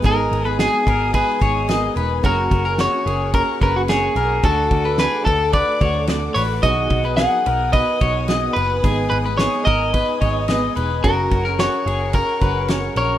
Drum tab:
RD |xxxxxxxx|xxxxxxxx|xxxxxxxx|xxxxxxxx|
HH |--------|--------|-------o|p-------|
SD |--o---o-|--o---o-|--o---o-|--o---o-|
BD |o--ooo--|oo--oo--|oo-ooo--|oo--oo--|

RD |xxxxxxxx|xxxxxxxx|
HH |--------|--------|
SD |--o---o-|--o---o-|
BD |o--ooo--|oo--oo--|